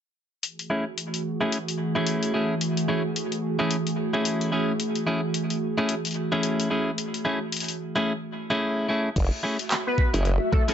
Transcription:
0.43 ambient pad E3 A3 F#4 G#4, closed hi-hat
0.59 closed hi-hat
0.70 clean electric guitar A3 C#4 E4 G#4
0.98 closed hi-hat
1.14 closed hi-hat
1.41 clean electric guitar A3 C#4 E4 G#4
1.52 closed hi-hat
1.68 closed hi-hat
1.95 clean electric guitar A3 C#4 E4 G#4
2.07 closed hi-hat
2.23 closed hi-hat
2.34 clean electric guitar A3 C#4 E4 G#4
2.61 closed hi-hat
2.77 closed hi-hat
2.88 clean electric guitar A3 C#4 E4 G#4
3.16 closed hi-hat
3.32 closed hi-hat
3.59 clean electric guitar A3 C#4 E4 G#4
3.71 closed hi-hat
3.87 closed hi-hat
4.13 clean electric guitar A3 C#4 E4 G#4
4.25 closed hi-hat
4.41 closed hi-hat
4.52 clean electric guitar A3 C#4 E4 G#4
4.80 closed hi-hat
4.95 closed hi-hat
5.07 clean electric guitar A3 C#4 E4 G#4
5.34 closed hi-hat
5.50 closed hi-hat
5.78 clean electric guitar A3 C#4 E4 G#4
5.89 closed hi-hat
6.05 closed hi-hat
6.07 closed hi-hat
6.11 closed hi-hat
6.13 closed hi-hat
6.14 closed hi-hat
6.32 clean electric guitar A3 C#4 E4 G#4
6.43 closed hi-hat
6.60 closed hi-hat
6.70 clean electric guitar A3 C#4 E4 G#4
6.98 closed hi-hat
7.14 closed hi-hat
7.25 clean electric guitar A3 C#4 E4 G#4
7.52 closed hi-hat
7.57 closed hi-hat
7.60 closed hi-hat
7.64 closed hi-hat
7.68 closed hi-hat
7.96 clean electric guitar A3 C#4 E4 G#4
8.50 clean electric guitar A3 C#4 E4 G#4
8.89 clean electric guitar A3 C#4 E4 G#4
9.16 wobble bass F#1, ambient pad F#4, kick, closed hi-hat, crash
9.34 ambient pad A3 E5
9.43 clean electric guitar A3 C#4 E4 G#4
9.59 closed hi-hat
9.71 clap, closed hi-hat
9.87 analog synth lead B4
9.98 kick
10.14 wobble bass F#1, clean electric guitar A3 C#4 E4 G#4, closed hi-hat
10.25 closed hi-hat
10.52 analog synth lead A4, kick
10.68 clean electric guitar A3 C#4 E4 G#4, analog synth lead A4, closed hi-hat

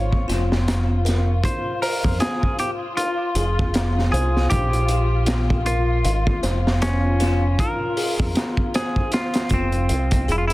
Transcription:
Already playing: fingered electric bass G#1, string section F4, clean electric guitar C#5
0.13 kick
0.28 fingered electric bass F1, music box F4, snare, closed hi-hat
0.52 snare
0.68 snare, closed hi-hat
1.05 music box A#4, snare, closed hi-hat
1.44 clean electric guitar C5, kick, closed hi-hat
1.82 clean electric guitar A#4, music box C5, open hi-hat
2.04 fingered electric bass F2, kick
2.20 clean electric guitar G#4, snare, closed hi-hat
2.43 kick
2.59 music box F4, clean electric guitar G4, closed hi-hat
2.97 clean electric guitar F4, closed hi-hat
3.35 fingered electric bass F1, music box G#4, closed hi-hat
3.59 kick
3.74 snare, closed hi-hat
3.99 snare
4.12 fingered electric bass C2, clean electric guitar G#4, music box C5, closed hi-hat
4.37 snare
4.50 fingered electric bass A#1, clean electric guitar G4, kick, closed hi-hat
4.73 closed hi-hat
4.88 music box F4, closed hi-hat
5.26 snare, closed hi-hat
5.50 kick
5.66 clean electric guitar F4, music box A#4, closed hi-hat
6.05 fingered electric bass G#1, closed hi-hat
6.27 kick
6.43 fingered electric bass F1, music box C5, snare, closed hi-hat
6.67 snare
6.82 clean electric guitar C#4, snare, closed hi-hat
7.20 music box F4, snare, closed hi-hat
7.59 clean electric guitar A#4, kick, closed hi-hat
7.97 music box G#4, open hi-hat
8.19 fingered electric bass F2, kick
8.35 snare, closed hi-hat
8.57 kick
8.74 clean electric guitar G#4, music box C5, snare, closed hi-hat
8.96 kick
9.12 clean electric guitar F4, snare, closed hi-hat
9.34 snare, closed hi-hat
9.49 fingered electric bass F1, music box F4, kick, closed hi-hat
9.54 clean electric guitar C4
9.72 closed hi-hat
9.89 fingered electric bass C2, closed hi-hat
10.11 kick, closed hi-hat
10.28 fingered electric bass F1, clean electric guitar E4, music box G#4, closed hi-hat
10.38 clean electric guitar F4
10.47 clean electric guitar E4, closed hi-hat

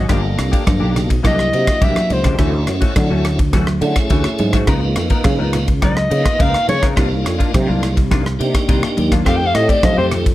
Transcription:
Already playing: soprano saxophone D#5
0.08 fretless electric bass G1, clean electric guitar F3 A#3 D4 G4, tonewheel organ A#3 D4 F4 A4, kick, cross-stick, ride, muted conga
0.23 muted clean electric guitar stroke
0.38 fretless electric bass C2, muted clean electric guitar stroke, cross-stick, ride, muted conga
0.52 clean electric guitar A#3 D4 G4, muted fretless electric bass stroke, kick, ride
0.67 fretless electric bass G2, kick, cross-stick, ride, high conga
0.80 fretless electric bass B1, clean electric guitar A#3 D4 G4
0.96 cross-stick, ride, muted conga, low conga
1.09 muted clean electric guitar stroke, kick, ride
1.23 fretless electric bass C2, clean electric guitar E3 A#3 D4 G4, tonewheel organ A#3 D4 E4 G4, soprano saxophone D#5, kick, cross-stick, ride, muted conga, high conga
1.39 cross-stick
1.53 fretless electric bass C3, tonewheel organ A#3 D4 E4 F#4, muted clean electric guitar stroke, ride
1.67 muted clean electric guitar stroke, kick, cross-stick, ride
1.81 fretless electric bass C2, clean electric guitar E3 A#3 D4 G4, soprano saxophone E5, kick, ride, high conga
1.96 cross-stick, high conga
2.10 fretless electric bass C#2, soprano saxophone C5, muted clean electric guitar stroke, ride, low conga
2.24 clean electric guitar A#3 D4 G4, kick, cross-stick, ride, low conga
2.38 fretless electric bass D2, clean electric guitar E3 A3 C#4 F#4, tonewheel organ A3 C#4 E4 F#4, kick, cross-stick, ride, muted conga
2.53 muted clean electric guitar stroke
2.67 fretless electric bass F#2, muted clean electric guitar stroke, cross-stick, ride, muted conga
2.81 clean electric guitar A3 C#4 F#4, muted fretless electric bass stroke, kick, ride
2.95 fretless electric bass D3, muted clean electric guitar stroke, kick, cross-stick, ride, high conga
3.10 fretless electric bass D2, clean electric guitar A3 C#4 F#4
3.25 cross-stick, ride
3.39 muted clean electric guitar stroke, kick, ride
3.53 clean electric guitar E3 A3 C#4 F#4, kick, cross-stick, ride, muted conga, high conga
3.67 muted clean electric guitar stroke, cross-stick
3.81 fretless electric bass D3, tonewheel organ A3 C#4 E4 G#4, muted clean electric guitar stroke, ride
3.96 muted clean electric guitar stroke, kick, cross-stick, ride
4.10 fretless electric bass D2, clean electric guitar E3 A3 C#4 F#4, kick, ride
4.24 cross-stick
4.38 fretless electric bass G#2, muted clean electric guitar stroke, ride, high conga
4.53 clean electric guitar A3 C#4 F#4, kick, cross-stick, ride
4.67 fretless electric bass C#2, clean electric guitar F3 B3 D#4 A#4, tonewheel organ A#3 B3 D#4 F4, kick, cross-stick, ride
4.82 muted clean electric guitar stroke
4.96 fretless electric bass F2, muted clean electric guitar stroke, cross-stick, ride, muted conga
5.10 clean electric guitar B3 D#4 A#4, muted fretless electric bass stroke, kick, ride
5.24 fretless electric bass C#3, muted clean electric guitar stroke, kick, cross-stick, ride, high conga
5.39 fretless electric bass C#2, clean electric guitar B3 D#4 A#4
5.53 cross-stick, ride, muted conga, low conga
5.68 muted clean electric guitar stroke, kick, ride
5.82 clean electric guitar F3 B3 D#4 A#4, soprano saxophone D#5, kick, cross-stick, ride, muted conga, high conga
5.96 muted clean electric guitar stroke, cross-stick
6.10 fretless electric bass C#3, tonewheel organ A#3 B3 D#4 F4, muted clean electric guitar stroke, ride
6.25 muted clean electric guitar stroke, kick, cross-stick, ride
6.39 fretless electric bass C#2, clean electric guitar F3 B3 D#4 A#4, soprano saxophone F5, kick, ride
6.54 cross-stick
6.68 fretless electric bass C#3, soprano saxophone C#5, muted clean electric guitar stroke, ride, high conga
6.82 clean electric guitar B3 D#4 A#4, kick, cross-stick, ride
6.96 fretless electric bass C2, clean electric guitar D#3 A#3 D4 F4, tonewheel organ A#3 D4 D#4 F4, kick, cross-stick, ride, muted conga
7.10 muted clean electric guitar stroke
7.24 fretless electric bass F2, muted clean electric guitar stroke, cross-stick, ride, muted conga
7.39 clean electric guitar A#3 D4 F4, muted fretless electric bass stroke, kick, ride
7.53 fretless electric bass C3, muted clean electric guitar stroke, kick, cross-stick, ride, high conga
7.68 fretless electric bass C2, clean electric guitar A#3 D4 F4
7.83 cross-stick, ride
7.96 muted clean electric guitar stroke, kick, ride
8.11 clean electric guitar D#3 A#3 D4 F4, kick, cross-stick, ride, muted conga, high conga
8.25 muted clean electric guitar stroke, cross-stick
8.39 fretless electric bass C3, tonewheel organ A#3 D4 D#4 G4, muted clean electric guitar stroke, ride
8.55 muted clean electric guitar stroke, kick, cross-stick, ride
8.68 fretless electric bass C2, clean electric guitar D#3 A#3 D4 F4, kick, ride
8.83 cross-stick
8.97 fretless electric bass D#2, muted clean electric guitar stroke, ride, high conga
9.12 clean electric guitar A#3 D4 F4, kick, cross-stick, ride
9.24 fretless electric bass F2, clean electric guitar D#3 A3 C4 G4, tonewheel organ A3 C4 D#4 G4, soprano saxophone F5, kick, cross-stick, ride, muted conga
9.37 soprano saxophone G5, muted clean electric guitar stroke
9.46 soprano saxophone F5
9.54 fretless electric bass A2, soprano saxophone D#5, muted clean electric guitar stroke, cross-stick, ride, muted conga
9.68 clean electric guitar A3 C4 G4, soprano saxophone D5, muted fretless electric bass stroke, kick, ride
9.83 fretless electric bass F3, soprano saxophone D#5, muted clean electric guitar stroke, kick, cross-stick, ride, high conga, low conga
9.97 fretless electric bass F2, clean electric guitar A3 C4 G4, soprano saxophone C5
10.11 cross-stick, ride, muted conga, low conga
10.26 muted clean electric guitar stroke, kick, ride

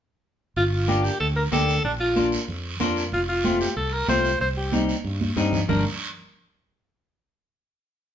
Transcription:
0.56 fingered electric bass G1, alto saxophone F4, high conga, long guiro
0.73 alto saxophone F4
0.88 clean electric guitar A#3 D4 G4, high conga, short guiro
1.04 alto saxophone G4, short guiro
1.20 fingered electric bass D2, alto saxophone A4, high conga, long guiro
1.36 alto saxophone A#4
1.52 fingered electric bass D2, clean electric guitar A#3 D4 G4, alto saxophone A4, high conga, short guiro
1.68 short guiro
1.84 fingered electric bass A#1, alto saxophone D4, high conga, long guiro
2.00 alto saxophone F4
2.16 clean electric guitar A#3 D4 F4, high conga, short guiro
2.32 short guiro
2.48 fingered electric bass F2, high conga, long guiro
2.80 fingered electric bass F2, clean electric guitar A#3 D4 F4, high conga, short guiro
2.96 short guiro
3.12 fingered electric bass F1, alto saxophone F4, high conga, long guiro
3.29 alto saxophone F4
3.44 clean electric guitar A3 C4 F4, high conga, short guiro
3.61 alto saxophone G4, short guiro
3.76 fingered electric bass C2, alto saxophone A4, high conga, long guiro
3.93 alto saxophone A#4
4.08 fingered electric bass C2, clean electric guitar A3 C4 F4, alto saxophone C5, high conga, short guiro
4.25 short guiro
4.40 fingered electric bass C2, alto saxophone C5, high conga, long guiro
4.57 alto saxophone G4
4.72 clean electric guitar G3 C4 D#4, high conga, short guiro
4.89 short guiro
5.04 fingered electric bass G2, high conga, long guiro
5.21 high conga
5.36 fingered electric bass G2, clean electric guitar G3 C4 D#4, high conga, short guiro
5.53 low conga, short guiro
5.69 fingered electric bass G1, clean electric guitar G3 A#3 D4, alto saxophone A#4, low conga, long guiro

